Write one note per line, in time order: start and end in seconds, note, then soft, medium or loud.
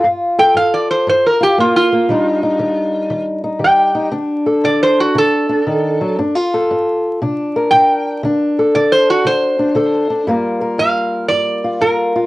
0.04 0.52 G2 medium
0.04 1.39 F4 medium
0.38 2.07 A4 medium
0.38 0.56 G5 loud
0.54 1.03 G2 medium
0.54 0.73 F5 medium
0.74 0.90 D5 medium
0.91 1.07 C5 medium
1.07 1.55 G2 medium
1.07 1.25 C5 loud
1.26 1.42 A#4 medium
1.41 2.07 F4 medium
1.41 1.59 G4 medium
1.58 2.06 G2 medium
1.58 1.91 A#3 medium
1.58 1.75 F4 medium
1.76 3.25 F4 loud
1.93 2.10 A#3 medium
2.09 2.57 D#3 medium
2.09 4.12 G3 medium
2.09 4.12 D4 medium
2.09 2.42 D#4 medium
2.43 3.43 D#4 medium
2.59 3.07 D#3 medium
3.10 3.58 D#3 medium
3.44 3.93 D#4 medium
3.59 4.08 D#3 medium
3.59 4.12 G4 medium
3.64 4.13 G5 loud
3.95 4.11 D#4 medium
4.11 4.60 D3 medium
4.11 5.49 D4 medium
4.46 6.15 A4 medium
4.64 5.12 D3 medium
4.64 4.81 D5 loud
4.83 4.99 C5 loud
5.00 5.16 F#4 medium
5.15 5.63 D3 medium
5.15 6.16 A4 loud
5.49 6.19 D4 medium
5.67 6.01 D#3 medium
6.01 6.18 F#3 medium
6.19 6.66 G2 medium
6.19 6.35 D4 medium
6.35 7.20 F4 medium
6.54 7.19 A4 medium
6.71 7.18 G2 medium
7.22 7.69 C3 medium
7.22 8.24 D4 medium
7.56 8.21 A#4 medium
7.71 8.20 C3 medium
7.71 8.21 G5 loud
8.23 8.70 D3 medium
8.23 9.58 D4 medium
8.59 9.75 A4 medium
8.75 9.22 D3 medium
8.75 8.91 D5 medium
8.92 9.08 C5 loud
9.10 9.25 F#4 medium
9.25 9.72 D3 medium
9.25 10.25 C5 loud
9.59 10.09 D4 medium
9.75 10.23 D3 medium
9.75 10.25 A4 medium
10.10 10.28 D4 medium
10.27 10.75 G2 medium
10.27 12.26 G3 medium
10.27 12.26 A#3 medium
10.27 11.63 F4 medium
10.27 10.61 A#4 medium
10.61 12.26 A#4 medium
10.78 11.26 G2 medium
10.78 11.26 F5 loud
11.28 11.78 G2 medium
11.28 11.82 D5 loud
11.64 11.81 F4 medium
11.81 12.26 G2 medium
11.81 12.15 F4 medium
11.81 12.26 A#4 medium
12.16 12.26 F4 medium